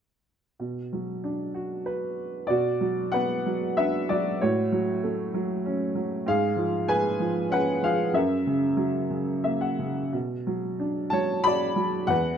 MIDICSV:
0, 0, Header, 1, 2, 480
1, 0, Start_track
1, 0, Key_signature, 2, "minor"
1, 0, Tempo, 662983
1, 421, Time_signature, 3, 2, 24, 8
1, 894, Tempo, 636267
1, 2814, Tempo, 621118
1, 5214, Tempo, 636943
1, 6654, Tempo, 667408
1, 8094, Tempo, 644468
1, 9268, End_track
2, 0, Start_track
2, 0, Title_t, "Upright piano"
2, 0, Program_c, 0, 0
2, 431, Note_on_c, 0, 47, 33
2, 551, Control_c, 0, 64, 127
2, 671, Note_on_c, 0, 54, 29
2, 896, Note_on_c, 0, 62, 36
2, 1127, Note_on_c, 0, 66, 37
2, 1365, Note_on_c, 0, 71, 39
2, 1573, Note_off_c, 0, 54, 0
2, 1811, Note_off_c, 0, 62, 0
2, 1813, Note_off_c, 0, 47, 0
2, 1815, Note_off_c, 0, 66, 0
2, 1825, Note_off_c, 0, 71, 0
2, 1825, Note_on_c, 0, 74, 59
2, 1840, Note_on_c, 0, 47, 45
2, 1848, Control_c, 0, 64, 0
2, 1849, Note_on_c, 0, 66, 50
2, 1959, Control_c, 0, 64, 127
2, 2080, Note_on_c, 0, 54, 35
2, 2303, Note_off_c, 0, 66, 0
2, 2313, Note_on_c, 0, 78, 70
2, 2331, Note_on_c, 0, 71, 55
2, 2336, Note_off_c, 0, 74, 0
2, 2336, Note_on_c, 0, 59, 40
2, 2563, Note_off_c, 0, 54, 0
2, 2574, Note_on_c, 0, 54, 41
2, 2776, Note_off_c, 0, 78, 0
2, 2785, Note_off_c, 0, 71, 0
2, 2806, Note_on_c, 0, 76, 71
2, 2812, Note_on_c, 0, 71, 50
2, 2815, Note_on_c, 0, 62, 42
2, 3041, Note_off_c, 0, 71, 0
2, 3050, Note_off_c, 0, 54, 0
2, 3055, Note_on_c, 0, 74, 65
2, 3062, Note_on_c, 0, 54, 40
2, 3063, Note_off_c, 0, 76, 0
2, 3068, Note_on_c, 0, 66, 52
2, 3271, Note_off_c, 0, 47, 0
2, 3275, Note_off_c, 0, 59, 0
2, 3287, Note_off_c, 0, 62, 0
2, 3288, Note_off_c, 0, 66, 0
2, 3295, Note_off_c, 0, 54, 0
2, 3303, Note_on_c, 0, 73, 55
2, 3305, Note_off_c, 0, 74, 0
2, 3308, Note_on_c, 0, 45, 52
2, 3310, Control_c, 0, 64, 0
2, 3313, Note_on_c, 0, 66, 43
2, 3460, Control_c, 0, 64, 127
2, 3542, Note_on_c, 0, 54, 38
2, 3754, Note_off_c, 0, 73, 0
2, 3759, Note_off_c, 0, 66, 0
2, 3785, Note_on_c, 0, 57, 40
2, 4009, Note_off_c, 0, 54, 0
2, 4020, Note_on_c, 0, 54, 43
2, 4263, Note_on_c, 0, 61, 44
2, 4480, Note_off_c, 0, 54, 0
2, 4492, Note_on_c, 0, 54, 42
2, 4708, Note_off_c, 0, 57, 0
2, 4709, Note_off_c, 0, 45, 0
2, 4722, Note_off_c, 0, 61, 0
2, 4726, Note_off_c, 0, 54, 0
2, 4732, Note_on_c, 0, 44, 54
2, 4743, Note_on_c, 0, 68, 56
2, 4745, Control_c, 0, 64, 0
2, 4745, Note_on_c, 0, 77, 69
2, 4871, Control_c, 0, 64, 127
2, 4966, Note_on_c, 0, 53, 42
2, 5185, Note_off_c, 0, 68, 0
2, 5206, Note_on_c, 0, 68, 46
2, 5213, Note_on_c, 0, 80, 83
2, 5217, Note_on_c, 0, 71, 64
2, 5230, Note_off_c, 0, 77, 0
2, 5437, Note_off_c, 0, 53, 0
2, 5448, Note_on_c, 0, 53, 45
2, 5658, Note_off_c, 0, 80, 0
2, 5659, Note_off_c, 0, 71, 0
2, 5674, Note_on_c, 0, 61, 46
2, 5691, Note_on_c, 0, 78, 75
2, 5703, Note_on_c, 0, 71, 59
2, 5912, Note_off_c, 0, 53, 0
2, 5922, Note_off_c, 0, 71, 0
2, 5923, Note_on_c, 0, 53, 43
2, 5927, Note_off_c, 0, 68, 0
2, 5931, Note_on_c, 0, 77, 74
2, 5938, Note_on_c, 0, 68, 53
2, 5940, Note_off_c, 0, 78, 0
2, 6138, Note_off_c, 0, 44, 0
2, 6149, Note_off_c, 0, 61, 0
2, 6154, Note_off_c, 0, 77, 0
2, 6156, Note_on_c, 0, 42, 51
2, 6158, Note_off_c, 0, 68, 0
2, 6159, Note_off_c, 0, 53, 0
2, 6162, Note_on_c, 0, 76, 57
2, 6180, Control_c, 0, 64, 0
2, 6180, Note_on_c, 0, 70, 46
2, 6301, Control_c, 0, 64, 127
2, 6407, Note_on_c, 0, 49, 41
2, 6618, Note_off_c, 0, 76, 0
2, 6627, Note_off_c, 0, 70, 0
2, 6631, Note_on_c, 0, 54, 40
2, 6864, Note_off_c, 0, 49, 0
2, 6874, Note_on_c, 0, 49, 40
2, 7116, Note_on_c, 0, 76, 47
2, 7118, Note_on_c, 0, 58, 38
2, 7237, Note_off_c, 0, 76, 0
2, 7239, Note_on_c, 0, 78, 48
2, 7356, Note_off_c, 0, 49, 0
2, 7367, Note_on_c, 0, 49, 37
2, 7577, Note_off_c, 0, 54, 0
2, 7580, Note_off_c, 0, 42, 0
2, 7583, Note_off_c, 0, 78, 0
2, 7595, Note_off_c, 0, 58, 0
2, 7605, Note_off_c, 0, 49, 0
2, 7610, Note_on_c, 0, 47, 44
2, 7626, Control_c, 0, 64, 0
2, 7757, Control_c, 0, 64, 127
2, 7856, Note_on_c, 0, 54, 36
2, 8092, Note_on_c, 0, 62, 40
2, 8319, Note_on_c, 0, 81, 72
2, 8328, Note_off_c, 0, 54, 0
2, 8339, Note_on_c, 0, 54, 41
2, 8341, Note_on_c, 0, 73, 54
2, 8563, Note_off_c, 0, 73, 0
2, 8569, Note_on_c, 0, 83, 80
2, 8574, Note_on_c, 0, 66, 42
2, 8576, Note_off_c, 0, 81, 0
2, 8590, Note_on_c, 0, 74, 62
2, 8798, Note_off_c, 0, 54, 0
2, 8810, Note_on_c, 0, 54, 41
2, 9022, Note_off_c, 0, 83, 0
2, 9023, Note_off_c, 0, 47, 0
2, 9027, Note_off_c, 0, 62, 0
2, 9033, Note_off_c, 0, 74, 0
2, 9040, Note_off_c, 0, 66, 0
2, 9041, Note_on_c, 0, 78, 75
2, 9045, Note_off_c, 0, 54, 0
2, 9045, Note_on_c, 0, 40, 52
2, 9066, Control_c, 0, 64, 0
2, 9066, Note_on_c, 0, 71, 54
2, 9217, Control_c, 0, 64, 127
2, 9268, Note_off_c, 0, 40, 0
2, 9268, Note_off_c, 0, 71, 0
2, 9268, Note_off_c, 0, 78, 0
2, 9268, End_track
0, 0, End_of_file